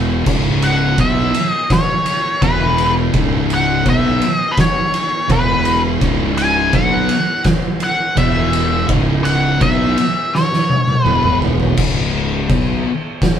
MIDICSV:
0, 0, Header, 1, 5, 480
1, 0, Start_track
1, 0, Key_signature, 4, "minor"
1, 0, Tempo, 719424
1, 170, Time_signature, 4, 2, 24, 8
1, 8938, End_track
2, 0, Start_track
2, 0, Title_t, "Lead electric guitar"
2, 0, Program_c, 0, 29
2, 424, Note_on_c, 0, 78, 99
2, 664, Note_off_c, 0, 78, 0
2, 671, Note_on_c, 0, 76, 102
2, 1011, Note_off_c, 0, 76, 0
2, 1011, Note_on_c, 0, 75, 102
2, 1149, Note_on_c, 0, 73, 99
2, 1155, Note_off_c, 0, 75, 0
2, 1617, Note_off_c, 0, 73, 0
2, 1620, Note_on_c, 0, 71, 79
2, 1950, Note_off_c, 0, 71, 0
2, 2362, Note_on_c, 0, 78, 105
2, 2571, Note_off_c, 0, 78, 0
2, 2599, Note_on_c, 0, 76, 107
2, 2900, Note_off_c, 0, 76, 0
2, 2900, Note_on_c, 0, 75, 107
2, 3012, Note_on_c, 0, 71, 74
2, 3031, Note_off_c, 0, 75, 0
2, 3055, Note_off_c, 0, 71, 0
2, 3070, Note_on_c, 0, 73, 100
2, 3544, Note_off_c, 0, 73, 0
2, 3547, Note_on_c, 0, 71, 81
2, 3874, Note_off_c, 0, 71, 0
2, 4256, Note_on_c, 0, 80, 107
2, 4501, Note_off_c, 0, 80, 0
2, 4504, Note_on_c, 0, 78, 100
2, 4951, Note_off_c, 0, 78, 0
2, 5228, Note_on_c, 0, 78, 104
2, 5456, Note_off_c, 0, 78, 0
2, 5459, Note_on_c, 0, 76, 105
2, 5909, Note_off_c, 0, 76, 0
2, 6168, Note_on_c, 0, 78, 102
2, 6416, Note_off_c, 0, 78, 0
2, 6419, Note_on_c, 0, 76, 95
2, 6902, Note_on_c, 0, 73, 83
2, 6911, Note_off_c, 0, 76, 0
2, 7383, Note_off_c, 0, 73, 0
2, 7383, Note_on_c, 0, 71, 83
2, 7591, Note_off_c, 0, 71, 0
2, 8938, End_track
3, 0, Start_track
3, 0, Title_t, "Distorted electric guitar"
3, 0, Program_c, 1, 30
3, 0, Note_on_c, 1, 40, 81
3, 0, Note_on_c, 1, 47, 100
3, 0, Note_on_c, 1, 52, 104
3, 163, Note_off_c, 1, 47, 0
3, 164, Note_off_c, 1, 40, 0
3, 167, Note_off_c, 1, 52, 0
3, 168, Note_on_c, 1, 37, 92
3, 173, Note_on_c, 1, 49, 111
3, 174, Note_on_c, 1, 44, 106
3, 642, Note_off_c, 1, 37, 0
3, 645, Note_off_c, 1, 44, 0
3, 645, Note_off_c, 1, 49, 0
3, 656, Note_on_c, 1, 47, 85
3, 660, Note_on_c, 1, 59, 112
3, 662, Note_on_c, 1, 54, 107
3, 886, Note_off_c, 1, 47, 0
3, 888, Note_off_c, 1, 59, 0
3, 889, Note_off_c, 1, 54, 0
3, 1613, Note_on_c, 1, 40, 102
3, 1617, Note_on_c, 1, 47, 99
3, 1623, Note_on_c, 1, 52, 104
3, 2085, Note_off_c, 1, 40, 0
3, 2086, Note_off_c, 1, 47, 0
3, 2089, Note_off_c, 1, 52, 0
3, 2098, Note_on_c, 1, 37, 98
3, 2101, Note_on_c, 1, 44, 101
3, 2104, Note_on_c, 1, 49, 98
3, 2567, Note_off_c, 1, 37, 0
3, 2569, Note_off_c, 1, 44, 0
3, 2570, Note_off_c, 1, 49, 0
3, 2581, Note_on_c, 1, 47, 106
3, 2583, Note_on_c, 1, 54, 111
3, 2587, Note_on_c, 1, 59, 103
3, 2809, Note_off_c, 1, 47, 0
3, 2809, Note_off_c, 1, 54, 0
3, 2812, Note_off_c, 1, 59, 0
3, 3529, Note_on_c, 1, 40, 102
3, 3532, Note_on_c, 1, 47, 106
3, 3534, Note_on_c, 1, 52, 101
3, 4003, Note_off_c, 1, 40, 0
3, 4004, Note_off_c, 1, 47, 0
3, 4006, Note_off_c, 1, 52, 0
3, 4009, Note_on_c, 1, 37, 101
3, 4016, Note_on_c, 1, 44, 108
3, 4021, Note_on_c, 1, 49, 106
3, 4483, Note_off_c, 1, 37, 0
3, 4486, Note_off_c, 1, 44, 0
3, 4489, Note_off_c, 1, 49, 0
3, 4492, Note_on_c, 1, 47, 95
3, 4495, Note_on_c, 1, 54, 103
3, 4498, Note_on_c, 1, 59, 109
3, 4725, Note_off_c, 1, 47, 0
3, 4726, Note_off_c, 1, 54, 0
3, 4728, Note_off_c, 1, 59, 0
3, 5450, Note_on_c, 1, 40, 94
3, 5455, Note_on_c, 1, 47, 92
3, 5459, Note_on_c, 1, 52, 109
3, 5924, Note_off_c, 1, 40, 0
3, 5926, Note_off_c, 1, 47, 0
3, 5928, Note_off_c, 1, 52, 0
3, 5932, Note_on_c, 1, 37, 101
3, 5932, Note_on_c, 1, 44, 98
3, 5936, Note_on_c, 1, 49, 109
3, 6405, Note_off_c, 1, 37, 0
3, 6405, Note_off_c, 1, 44, 0
3, 6407, Note_off_c, 1, 49, 0
3, 6409, Note_on_c, 1, 47, 99
3, 6411, Note_on_c, 1, 54, 105
3, 6415, Note_on_c, 1, 59, 116
3, 6644, Note_off_c, 1, 47, 0
3, 6645, Note_off_c, 1, 54, 0
3, 6647, Note_off_c, 1, 59, 0
3, 7369, Note_on_c, 1, 40, 99
3, 7374, Note_on_c, 1, 47, 104
3, 7376, Note_on_c, 1, 52, 105
3, 7844, Note_off_c, 1, 40, 0
3, 7847, Note_off_c, 1, 47, 0
3, 7848, Note_off_c, 1, 52, 0
3, 7852, Note_on_c, 1, 37, 92
3, 7857, Note_on_c, 1, 44, 92
3, 7858, Note_on_c, 1, 49, 112
3, 8325, Note_off_c, 1, 37, 0
3, 8328, Note_off_c, 1, 44, 0
3, 8328, Note_off_c, 1, 49, 0
3, 8335, Note_on_c, 1, 47, 102
3, 8335, Note_on_c, 1, 54, 99
3, 8339, Note_on_c, 1, 59, 111
3, 8567, Note_off_c, 1, 47, 0
3, 8567, Note_off_c, 1, 54, 0
3, 8569, Note_off_c, 1, 59, 0
3, 8938, End_track
4, 0, Start_track
4, 0, Title_t, "Fingered electric bass"
4, 0, Program_c, 2, 33
4, 0, Note_on_c, 2, 28, 98
4, 147, Note_off_c, 2, 28, 0
4, 175, Note_on_c, 2, 25, 98
4, 626, Note_off_c, 2, 25, 0
4, 655, Note_on_c, 2, 35, 99
4, 876, Note_off_c, 2, 35, 0
4, 1616, Note_on_c, 2, 28, 103
4, 2067, Note_off_c, 2, 28, 0
4, 2096, Note_on_c, 2, 25, 95
4, 2547, Note_off_c, 2, 25, 0
4, 2575, Note_on_c, 2, 35, 99
4, 2796, Note_off_c, 2, 35, 0
4, 3535, Note_on_c, 2, 28, 99
4, 3986, Note_off_c, 2, 28, 0
4, 4015, Note_on_c, 2, 25, 100
4, 4467, Note_off_c, 2, 25, 0
4, 4492, Note_on_c, 2, 35, 98
4, 4715, Note_off_c, 2, 35, 0
4, 5454, Note_on_c, 2, 28, 110
4, 5907, Note_off_c, 2, 28, 0
4, 5934, Note_on_c, 2, 25, 96
4, 6387, Note_off_c, 2, 25, 0
4, 6412, Note_on_c, 2, 35, 104
4, 6636, Note_off_c, 2, 35, 0
4, 7374, Note_on_c, 2, 28, 102
4, 7827, Note_off_c, 2, 28, 0
4, 7858, Note_on_c, 2, 25, 102
4, 8309, Note_off_c, 2, 25, 0
4, 8340, Note_on_c, 2, 35, 104
4, 8560, Note_off_c, 2, 35, 0
4, 8938, End_track
5, 0, Start_track
5, 0, Title_t, "Drums"
5, 175, Note_on_c, 9, 49, 103
5, 177, Note_on_c, 9, 36, 115
5, 242, Note_off_c, 9, 49, 0
5, 243, Note_off_c, 9, 36, 0
5, 416, Note_on_c, 9, 51, 82
5, 482, Note_off_c, 9, 51, 0
5, 654, Note_on_c, 9, 51, 115
5, 656, Note_on_c, 9, 36, 105
5, 720, Note_off_c, 9, 51, 0
5, 723, Note_off_c, 9, 36, 0
5, 897, Note_on_c, 9, 51, 87
5, 964, Note_off_c, 9, 51, 0
5, 1136, Note_on_c, 9, 36, 109
5, 1136, Note_on_c, 9, 51, 104
5, 1143, Note_on_c, 9, 38, 112
5, 1202, Note_off_c, 9, 51, 0
5, 1203, Note_off_c, 9, 36, 0
5, 1210, Note_off_c, 9, 38, 0
5, 1373, Note_on_c, 9, 51, 85
5, 1439, Note_off_c, 9, 51, 0
5, 1614, Note_on_c, 9, 51, 115
5, 1615, Note_on_c, 9, 36, 115
5, 1681, Note_off_c, 9, 36, 0
5, 1681, Note_off_c, 9, 51, 0
5, 1856, Note_on_c, 9, 51, 79
5, 1923, Note_off_c, 9, 51, 0
5, 2092, Note_on_c, 9, 51, 106
5, 2095, Note_on_c, 9, 36, 106
5, 2159, Note_off_c, 9, 51, 0
5, 2161, Note_off_c, 9, 36, 0
5, 2336, Note_on_c, 9, 51, 76
5, 2403, Note_off_c, 9, 51, 0
5, 2573, Note_on_c, 9, 51, 106
5, 2574, Note_on_c, 9, 36, 103
5, 2640, Note_off_c, 9, 51, 0
5, 2641, Note_off_c, 9, 36, 0
5, 2813, Note_on_c, 9, 51, 76
5, 2879, Note_off_c, 9, 51, 0
5, 3052, Note_on_c, 9, 51, 94
5, 3053, Note_on_c, 9, 36, 110
5, 3059, Note_on_c, 9, 38, 113
5, 3118, Note_off_c, 9, 51, 0
5, 3120, Note_off_c, 9, 36, 0
5, 3126, Note_off_c, 9, 38, 0
5, 3294, Note_on_c, 9, 51, 78
5, 3361, Note_off_c, 9, 51, 0
5, 3534, Note_on_c, 9, 36, 115
5, 3535, Note_on_c, 9, 51, 108
5, 3600, Note_off_c, 9, 36, 0
5, 3602, Note_off_c, 9, 51, 0
5, 3771, Note_on_c, 9, 51, 80
5, 3838, Note_off_c, 9, 51, 0
5, 4012, Note_on_c, 9, 51, 104
5, 4013, Note_on_c, 9, 36, 103
5, 4079, Note_off_c, 9, 36, 0
5, 4079, Note_off_c, 9, 51, 0
5, 4253, Note_on_c, 9, 51, 77
5, 4320, Note_off_c, 9, 51, 0
5, 4490, Note_on_c, 9, 51, 104
5, 4492, Note_on_c, 9, 36, 106
5, 4557, Note_off_c, 9, 51, 0
5, 4559, Note_off_c, 9, 36, 0
5, 4730, Note_on_c, 9, 51, 87
5, 4796, Note_off_c, 9, 51, 0
5, 4966, Note_on_c, 9, 51, 105
5, 4971, Note_on_c, 9, 36, 102
5, 4973, Note_on_c, 9, 38, 118
5, 5033, Note_off_c, 9, 51, 0
5, 5037, Note_off_c, 9, 36, 0
5, 5040, Note_off_c, 9, 38, 0
5, 5205, Note_on_c, 9, 51, 83
5, 5272, Note_off_c, 9, 51, 0
5, 5451, Note_on_c, 9, 51, 113
5, 5452, Note_on_c, 9, 36, 112
5, 5517, Note_off_c, 9, 51, 0
5, 5518, Note_off_c, 9, 36, 0
5, 5692, Note_on_c, 9, 51, 78
5, 5759, Note_off_c, 9, 51, 0
5, 5929, Note_on_c, 9, 51, 112
5, 5932, Note_on_c, 9, 36, 110
5, 5996, Note_off_c, 9, 51, 0
5, 5999, Note_off_c, 9, 36, 0
5, 6172, Note_on_c, 9, 51, 83
5, 6239, Note_off_c, 9, 51, 0
5, 6412, Note_on_c, 9, 51, 104
5, 6414, Note_on_c, 9, 36, 109
5, 6478, Note_off_c, 9, 51, 0
5, 6481, Note_off_c, 9, 36, 0
5, 6656, Note_on_c, 9, 51, 77
5, 6723, Note_off_c, 9, 51, 0
5, 6904, Note_on_c, 9, 38, 66
5, 6971, Note_off_c, 9, 38, 0
5, 7026, Note_on_c, 9, 38, 60
5, 7092, Note_off_c, 9, 38, 0
5, 7136, Note_on_c, 9, 48, 79
5, 7202, Note_off_c, 9, 48, 0
5, 7257, Note_on_c, 9, 48, 79
5, 7323, Note_off_c, 9, 48, 0
5, 7379, Note_on_c, 9, 47, 95
5, 7446, Note_off_c, 9, 47, 0
5, 7497, Note_on_c, 9, 45, 75
5, 7564, Note_off_c, 9, 45, 0
5, 7620, Note_on_c, 9, 43, 105
5, 7686, Note_off_c, 9, 43, 0
5, 7737, Note_on_c, 9, 43, 93
5, 7804, Note_off_c, 9, 43, 0
5, 7855, Note_on_c, 9, 49, 123
5, 7855, Note_on_c, 9, 57, 71
5, 7857, Note_on_c, 9, 36, 112
5, 7922, Note_off_c, 9, 49, 0
5, 7922, Note_off_c, 9, 57, 0
5, 7924, Note_off_c, 9, 36, 0
5, 8336, Note_on_c, 9, 57, 69
5, 8337, Note_on_c, 9, 36, 113
5, 8402, Note_off_c, 9, 57, 0
5, 8404, Note_off_c, 9, 36, 0
5, 8819, Note_on_c, 9, 36, 109
5, 8821, Note_on_c, 9, 57, 69
5, 8828, Note_on_c, 9, 38, 112
5, 8886, Note_off_c, 9, 36, 0
5, 8887, Note_off_c, 9, 57, 0
5, 8895, Note_off_c, 9, 38, 0
5, 8938, End_track
0, 0, End_of_file